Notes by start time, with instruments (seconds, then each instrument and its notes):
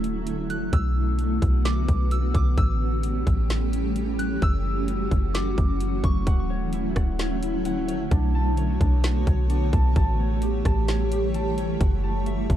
Already playing: 808-style bass D1, ambient pad D3 F#3 A3 C#4 E4
0.04 closed hi-hat
0.27 closed hi-hat
0.50 synth bell F#6, closed hi-hat
0.73 808-style bass B1, ambient pad B3 F#4, synth bell E6, kick, closed hi-hat
1.19 closed hi-hat
1.42 808-style bass B1, kick, closed hi-hat
1.65 synth bell D6, snare, closed hi-hat
1.88 808-style bass B1, kick, closed hi-hat
2.11 synth bell E6, closed hi-hat
2.34 808-style bass B1, synth bell D6, kick, closed hi-hat
2.57 808-style bass A1, ambient pad E3 G3 A3 C#4 G4, synth bell E6, kick, closed hi-hat
3.03 closed hi-hat
3.27 808-style bass A1, kick, closed hi-hat
3.50 snare, closed hi-hat
3.73 closed hi-hat
3.96 closed hi-hat
4.19 synth bell F#6, closed hi-hat
4.42 808-style bass F#1, ambient pad F#3 A3 F#4, synth bell E6, kick, closed hi-hat
4.88 closed hi-hat
5.11 808-style bass F#1, kick, closed hi-hat
5.34 synth bell D6, snare, closed hi-hat
5.58 808-style bass F#1, kick, closed hi-hat
5.80 closed hi-hat
6.04 808-style bass F#1, synth bell C#6, kick, closed hi-hat
6.27 808-style bass D1, ambient pad D3 F#3 A3 C#4 E4, harp F#5, kick, closed hi-hat
6.50 harp C#5
6.73 harp E4, closed hi-hat
6.95 808-style bass D1, harp F#5, kick, cross-stick, closed hi-hat
7.19 harp C#5, snare, closed hi-hat
7.42 harp E4, closed hi-hat
7.65 harp F#5, closed hi-hat
7.88 harp C#5, closed hi-hat
8.11 808-style bass B1, ambient pad D3 B3 F#4 C#5, harp D4, kick, closed hi-hat
8.35 harp A5
8.57 harp C#5, closed hi-hat
8.81 808-style bass B1, harp D4, kick, closed hi-hat
9.04 snare, closed hi-hat
9.27 808-style bass B1, harp C#5, kick, closed hi-hat
9.50 harp D4, closed hi-hat
9.73 808-style bass B1, harp A5, kick, closed hi-hat
9.96 808-style bass A1, ambient pad E3 G3 G4 C#5, harp A5, kick, closed hi-hat
10.20 harp C#5
10.42 harp G4, closed hi-hat
10.65 808-style bass A1, harp A5, kick, cross-stick, closed hi-hat
10.88 harp C#5, snare, closed hi-hat
11.12 harp G4, closed hi-hat
11.34 harp A5, closed hi-hat
11.58 harp C#5, closed hi-hat
11.80 808-style bass F#1, ambient pad F#3 F#4, harp F#4, kick, closed hi-hat
12.03 harp A5
12.26 harp E5, closed hi-hat
12.50 808-style bass F#1, harp F#4, kick, closed hi-hat